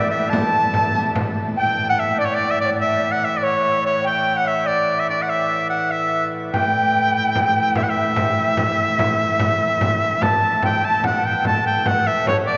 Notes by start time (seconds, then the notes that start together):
Already playing: A2 E3 D5
0.10 E5, riq
0.30 A5, riq, frame drum
0.74 frame drum
0.95 riq
1.16 frame drum
1.57 A2 E3 G5
1.89 F#5
1.98 E5
2.18 D5
2.26 C#5
2.31 D5
2.35 D5
2.51 E5
2.60 D5
2.66 C#5
2.70 D5
2.80 E5
3.12 F#5
3.23 E5
3.37 D5
3.42 C#5
3.84 C#5
4.04 G5
4.36 F#5
4.45 E5
4.65 D5
4.96 E5
5.10 D5
5.22 F#5
5.27 E5
5.70 F#5
5.90 E5
6.53 A2 E3 G5, frame drum
7.36 frame drum
7.75 E5, frame drum
7.83 F#5
7.89 E5
8.16 frame drum
8.57 frame drum
8.99 frame drum
9.39 frame drum
9.81 frame drum
10.22 A5, frame drum
10.43 frame drum
10.63 G5, frame drum
10.84 A5, frame drum
11.04 F#5, frame drum
11.24 G5
11.45 A2 E3 A5, frame drum
11.67 G5
11.85 F#5, frame drum
12.06 E5, frame drum
12.26 C#5, frame drum
12.45 D5